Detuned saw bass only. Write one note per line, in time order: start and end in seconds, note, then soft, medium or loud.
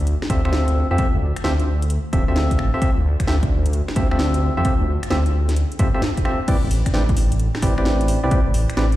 0.00 0.15 D2 medium
0.30 0.41 D2 medium
0.45 0.84 D2 medium
0.91 0.96 F2 medium
1.14 1.19 D2 loud
1.22 1.32 D2 medium
1.44 1.98 D2 loud
2.13 2.24 D1 medium
2.28 2.60 D2 medium
2.59 2.70 A1 loud
2.97 3.02 D2 medium
3.05 3.15 D2 medium
3.28 3.81 D2 loud
3.96 4.07 D2 medium
4.11 4.50 D2 medium
4.57 4.63 F2 medium
4.80 4.86 D2 medium
4.88 4.99 D2 medium
5.11 5.65 D2 loud
5.79 5.90 G2 loud
6.63 6.69 A1 medium
6.71 6.82 A1 medium
6.94 7.48 A1 loud
7.63 7.73 A1 medium
7.78 8.16 A1 medium
8.24 8.29 C2 medium
8.47 8.52 A1 medium
8.54 8.65 A1 medium
8.77 8.96 A1 loud